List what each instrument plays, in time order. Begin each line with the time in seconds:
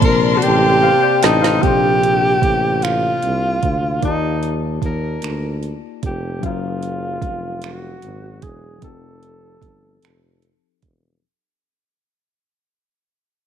Already playing: tine electric piano C3 A#3 C4 A#4 C5, string section A#4 D5 A5 C6
0.02 tuba A#1, tenor saxophone A#4, kick, closed hi-hat
0.37 tenor saxophone F#4
0.42 tuba A1, tenor saxophone G4, closed hi-hat
0.83 tine electric piano C5 F5
1.03 tine electric piano D5 G5
1.23 tuba A1, tenor saxophone D#4, tine electric piano A5, snare, closed hi-hat
1.42 tine electric piano C5 F5, snare
1.59 tine electric piano C3 A#3 D4, tenor saxophone G4, kick, closed hi-hat
1.63 tuba A#1, tine electric piano A4 C5
2.03 closed hi-hat
2.42 tuba A1, kick, closed hi-hat
2.82 tenor saxophone F4, finger snap, closed hi-hat
3.22 tuba C2, closed hi-hat
3.63 tuba D2, kick, closed hi-hat
4.00 tuba D#2, tine electric piano A#3 D#4 D5, kick, closed hi-hat
4.04 tenor saxophone D#4, tine electric piano F4 G4 A5
4.43 closed hi-hat
4.82 tuba D#2, tenor saxophone A#4, kick, closed hi-hat
5.22 tuba D2, finger snap, closed hi-hat
5.63 closed hi-hat
6.03 tuba F1, tenor saxophone G4, kick, closed hi-hat
6.40 tuba F#1, tine electric piano F#3 C#4 F5, kick, closed hi-hat
6.46 tenor saxophone F4, tine electric piano G#4 A#4
6.83 closed hi-hat
7.22 tuba F1, kick, closed hi-hat
7.62 tenor saxophone F#4, finger snap, closed hi-hat
8.02 tuba G#1, closed hi-hat
8.42 tuba E1, tenor saxophone G#4, kick, closed hi-hat
8.78 tine electric piano F3 C4, closed hi-hat
8.82 tuba F1, tine electric piano D#4 G4 A4, tenor saxophone A4, kick
9.23 closed hi-hat
9.62 tuba G1, kick, closed hi-hat
10.03 tuba F1, finger snap, closed hi-hat
10.42 closed hi-hat
10.82 tuba E1, kick, closed hi-hat